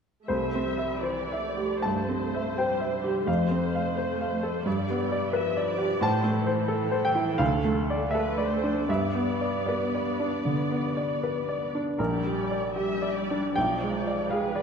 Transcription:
0.27 1.79 C2 soft
0.27 0.62 A3 soft
0.27 1.02 C5 soft
0.27 0.98 E5 soft
0.55 0.94 C4 soft
0.65 1.03 G3 soft
0.78 1.18 E5 soft
1.01 1.42 E3 soft
1.01 1.45 C5 soft
1.01 1.82 D5 soft
1.32 1.74 E5 soft
1.42 2.55 A3 soft
1.57 1.99 G4 soft
1.82 2.24 G2 soft
1.82 3.25 C5 soft
1.82 2.53 A5 soft
2.09 2.48 C4 soft
2.35 2.72 E5 soft
2.56 2.91 G3 soft
2.56 2.96 C5 soft
2.56 3.24 G5 soft
2.80 3.18 E5 soft
2.92 3.27 G3 soft
3.04 3.28 G4 soft
3.27 4.62 F2 soft
3.27 3.60 A3 soft
3.27 4.63 C5 soft
3.27 3.73 F5 soft
3.50 3.87 C4 soft
3.62 4.64 A3 soft
3.75 4.11 F5 soft
3.97 4.34 C5 soft
4.21 4.58 F5 soft
4.43 4.66 A4 soft
4.65 5.98 G2 soft
4.65 5.34 G3 soft
4.65 5.34 D5 soft
4.90 5.26 B3 soft
5.12 5.48 D5 soft
5.33 6.02 F3 soft
5.33 5.70 B4 soft
5.33 5.68 E5 soft
5.57 5.93 D5 soft
5.67 6.01 D5 soft
5.78 6.02 G4 soft
6.01 7.35 A2 soft
6.01 7.37 E3 soft
6.01 6.36 C5 soft
6.01 7.01 A5 medium
6.24 6.61 A3 soft
6.36 8.12 A4 soft
6.47 6.84 C5 soft
6.68 7.06 A4 soft
6.91 7.30 C5 soft
7.05 7.38 G5 medium
7.15 7.39 E4 soft
7.38 8.83 D2 soft
7.38 7.74 A3 soft
7.38 8.07 F5 medium
7.65 8.03 A3 soft
7.75 8.86 A3 soft
7.90 8.28 D5 soft
8.11 8.53 A4 soft
8.11 8.50 B4 soft
8.11 8.83 E5 medium
8.38 8.78 D5 soft
8.50 8.88 C5 soft
8.64 8.89 D4 soft
8.89 10.40 G2 soft
8.89 11.74 B3 soft
8.89 11.75 D5 soft
8.89 9.63 E5 soft
9.15 9.56 B3 soft
9.41 9.65 D5 soft
9.66 10.09 B4 soft
9.66 9.93 D5 soft
9.95 10.35 D5 soft
10.20 10.60 D4 soft
10.45 10.86 D3 soft
10.71 11.12 B3 soft
10.97 11.38 D5 soft
11.23 11.64 B4 soft
11.49 11.89 D5 soft
11.75 12.00 D4 soft
11.98 13.52 A#1 soft
11.98 12.71 G3 soft
11.98 13.51 A#4 soft
11.98 12.71 D5 soft
12.26 12.65 G3 soft
12.51 12.91 D5 soft
12.74 13.54 G3 soft
12.74 13.18 G4 soft
12.74 13.15 E5 soft
13.02 13.45 D5 soft
13.14 13.54 D5 soft
13.31 13.57 D4 soft
13.55 14.62 B1 soft
13.55 14.27 F3 soft
13.55 14.28 D5 soft
13.55 14.25 G5 medium
13.84 14.21 G#3 soft
14.07 14.44 D5 soft
14.28 14.62 G#3 soft
14.28 14.62 G#4 soft
14.28 14.62 B4 soft
14.28 14.62 F5 soft
14.56 14.62 D5 soft

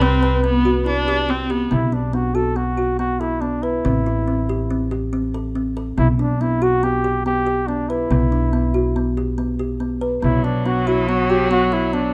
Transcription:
0.00 1.68 C2 medium
0.00 0.12 C4 medium
0.00 0.44 C4 medium
0.00 1.25 B4 loud
0.23 0.34 B4 medium
0.44 0.55 B3 medium
0.44 0.84 B3 medium
0.44 frame drum soft
0.65 0.76 F#4 medium
0.65 frame drum soft
0.86 1.31 D4 medium
0.86 0.97 E4 medium
0.86 frame drum soft
1.08 1.19 G4 medium
1.29 1.40 C4 medium
1.29 1.52 C4 medium
1.50 1.72 B3 medium
1.50 1.61 G4 medium
1.50 frame drum soft
1.71 3.81 B1 medium
1.71 1.82 B3 medium
1.71 1.95 E4 medium
1.71 frame drum medium
1.92 2.04 D4 medium
1.92 2.16 D4 medium
2.13 2.25 B3 medium
2.13 2.36 F#4 medium
2.35 2.46 F#4 medium
2.35 2.58 A4 medium
2.56 2.67 B3 medium
2.56 2.98 F#4 medium
2.77 2.89 F#4 medium
2.77 frame drum soft
2.99 3.10 B3 medium
2.99 3.21 F#4 medium
3.20 3.42 E4 medium
3.20 3.32 A4 medium
3.41 3.53 B3 medium
3.41 3.64 D4 medium
3.41 frame drum soft
3.63 4.91 E4 medium
3.63 3.74 B4 medium
3.85 5.94 A1 medium
3.85 3.96 C4 medium
3.85 frame drum medium
4.06 4.17 E4 medium
4.28 4.38 C4 medium
4.49 4.60 G4 medium
4.70 4.81 C4 medium
4.91 5.02 G4 medium
4.91 frame drum soft
5.13 5.24 C4 medium
5.34 5.45 A4 medium
5.55 5.66 C4 medium
5.55 frame drum soft
5.77 5.88 A4 medium
5.97 8.07 B1 medium
5.97 6.09 B3 medium
5.97 6.08 E4 medium
5.97 frame drum medium
6.19 6.30 D4 medium
6.19 6.43 D4 medium
6.41 6.52 B3 medium
6.41 6.64 E4 medium
6.62 6.73 F#4 medium
6.62 6.85 F#4 medium
6.83 6.94 B3 medium
6.83 7.25 G4 loud
7.04 7.15 G4 medium
7.04 frame drum soft
7.26 7.37 B3 medium
7.26 7.69 G4 medium
7.46 7.58 G4 medium
7.68 7.79 B3 medium
7.68 7.90 D4 medium
7.68 frame drum soft
7.89 9.17 E4 medium
7.89 8.01 B4 medium
8.10 10.19 B1 medium
8.10 8.22 B3 medium
8.10 frame drum medium
8.32 8.43 D4 medium
8.32 frame drum soft
8.53 8.64 B3 medium
8.74 8.85 F#4 medium
8.96 9.07 B3 medium
9.17 9.28 G4 medium
9.17 frame drum soft
9.38 9.49 B3 medium
9.38 frame drum soft
9.59 9.70 G4 medium
9.59 frame drum soft
9.80 9.91 B3 medium
10.01 10.13 B4 medium
10.22 12.14 B1 medium
10.22 12.14 F#3 medium
10.22 10.34 B3 medium
10.22 10.46 E4 medium
10.22 frame drum medium
10.44 10.68 D4 medium
10.44 10.55 D4 medium
10.66 10.77 B3 medium
10.66 10.89 F#4 medium
10.87 11.09 E4 medium
10.87 10.98 F#4 medium
11.08 11.20 B3 medium
11.08 11.31 F#4 medium
11.30 11.41 F#4 medium
11.30 11.51 G4 medium
11.30 frame drum soft
11.51 11.62 B3 medium
11.51 11.75 F#4 medium
11.72 11.95 E4 medium
11.72 11.83 A4 medium
11.93 12.04 B3 medium
11.93 12.14 D4 medium
11.93 frame drum soft

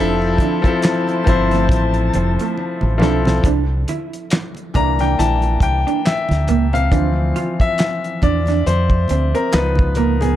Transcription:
0.00 0.36 F1 loud
0.00 0.55 F3 loud
0.00 0.56 C4 medium
0.00 0.14 D4 medium
0.00 0.57 E4 loud
0.00 3.40 E4 medium
0.00 0.57 A4 loud
0.00 3.40 C5 medium
0.00 3.40 E5 loud
0.00 3.40 A5 medium
0.22 muted conga soft
0.38 0.58 D4 medium
0.38 kick medium
0.38 closed hi-hat medium
0.38 high conga medium
0.62 1.19 F3 loud
0.62 1.20 C4 medium
0.62 1.20 E4 medium
0.62 kick medium
0.62 closed hi-hat soft
0.67 1.21 A4 loud
0.82 muted clean electric guitar stroke soft
0.82 snare loud
0.82 clap medium
0.82 closed hi-hat loud
1.07 closed hi-hat soft
1.07 muted conga soft
1.24 1.67 G1 medium
1.24 2.83 F3 medium
1.24 2.84 C4 medium
1.24 2.85 E4 medium
1.24 kick medium
1.24 closed hi-hat medium
1.24 low conga medium
1.29 1.45 E4 medium
1.29 2.85 C5 loud
1.51 1.65 A3 medium
1.51 snare soft
1.51 closed hi-hat soft
1.51 high conga soft
1.69 2.09 A1 loud
1.69 muted clean electric guitar stroke soft
1.69 kick loud
1.69 closed hi-hat loud
1.69 high conga medium
1.94 closed hi-hat soft
2.14 2.36 F1 medium
2.14 2.32 C4 medium
2.14 closed hi-hat medium
2.14 high conga medium
2.39 2.53 A3 medium
2.39 closed hi-hat soft
2.57 muted clean electric guitar stroke soft
2.57 muted conga soft
2.81 3.01 A1 medium
2.81 high conga medium
2.98 3.40 B1 medium
2.98 3.39 F3 medium
2.98 3.39 C4 medium
2.98 3.18 D4 medium
2.98 3.40 E4 medium
2.98 low conga medium
3.02 3.41 A4 medium
3.02 snare medium
3.25 3.40 C4 medium
3.25 snare loud
3.25 low conga medium
3.43 3.84 C2 loud
3.43 3.62 D4 medium
3.43 kick loud
3.43 closed hi-hat medium
3.43 muted conga soft
3.88 4.06 E4 medium
3.88 closed hi-hat medium
3.88 high conga medium
4.13 closed hi-hat soft
4.30 muted clean electric guitar stroke soft
4.30 snare loud
4.30 clap medium
4.30 closed hi-hat medium
4.55 closed hi-hat soft
4.55 muted conga soft
4.74 5.14 C2 medium
4.74 6.87 E3 soft
4.74 6.88 A#3 medium
4.74 4.92 D4 medium
4.74 6.88 D4 medium
4.74 5.01 A#5 loud
4.74 kick medium
4.74 closed hi-hat medium
4.74 low conga medium
4.99 5.13 D4 medium
4.99 5.19 G5 medium
4.99 snare soft
4.99 closed hi-hat soft
4.99 high conga soft
5.19 5.58 A#1 medium
5.19 5.36 E4 medium
5.19 5.63 A5 medium
5.19 closed hi-hat medium
5.19 muted conga soft
5.19 high conga medium
5.42 closed hi-hat soft
5.42 muted conga soft
5.60 5.84 C2 medium
5.60 6.07 G5 medium
5.60 muted clean electric guitar stroke soft
5.60 kick medium
5.60 closed hi-hat medium
5.60 high conga medium
5.87 5.99 D4 medium
5.87 closed hi-hat soft
6.05 6.76 E5 medium
6.05 muted clean electric guitar stroke soft
6.05 snare loud
6.05 clap medium
6.05 closed hi-hat medium
6.05 muted conga soft
6.29 6.47 D2 medium
6.29 snare soft
6.29 closed hi-hat soft
6.29 muted conga soft
6.29 high conga medium
6.48 6.88 C#2 medium
6.48 6.66 A#3 medium
6.48 closed hi-hat medium
6.48 low conga medium
6.73 6.86 C4 medium
6.73 7.63 F5 medium
6.73 closed hi-hat soft
6.73 low conga medium
6.91 7.31 D2 medium
6.91 8.19 E3 medium
6.91 8.18 F3 medium
6.91 8.18 C4 medium
6.91 7.09 D4 medium
6.91 kick loud
6.91 closed hi-hat medium
7.36 7.53 F4 medium
7.36 closed hi-hat medium
7.36 high conga medium
7.60 8.24 E5 medium
7.60 kick medium
7.60 closed hi-hat soft
7.78 muted clean electric guitar stroke soft
7.78 snare loud
7.78 clap medium
7.78 closed hi-hat medium
8.04 closed hi-hat soft
8.22 8.62 E2 medium
8.22 8.40 D4 medium
8.22 8.67 D5 medium
8.22 kick medium
8.22 closed hi-hat medium
8.22 low conga medium
8.46 8.61 D4 medium
8.46 snare soft
8.46 closed hi-hat soft
8.46 high conga soft
8.66 9.06 F2 medium
8.66 9.31 C5 medium
8.66 muted clean electric guitar stroke soft
8.66 closed hi-hat medium
8.66 high conga medium
8.90 kick medium
8.90 muted conga soft
9.08 9.32 D2 medium
9.08 9.27 C4 medium
9.08 closed hi-hat medium
9.08 high conga medium
9.35 9.47 C4 medium
9.35 9.52 A#4 medium
9.35 closed hi-hat soft
9.52 10.36 C#2 medium
9.52 10.35 F3 medium
9.52 10.36 B3 medium
9.52 10.36 D#4 medium
9.52 9.93 B4 medium
9.52 muted clean electric guitar stroke soft
9.52 snare loud
9.52 clap medium
9.52 closed hi-hat medium
9.52 muted conga soft
9.75 kick loud
9.75 high conga medium
9.95 10.14 A#3 medium
9.95 10.22 A#4 medium
9.95 closed hi-hat medium
9.95 low conga medium
10.21 10.35 B3 medium
10.21 10.36 G#4 medium
10.21 closed hi-hat medium
10.21 low conga medium

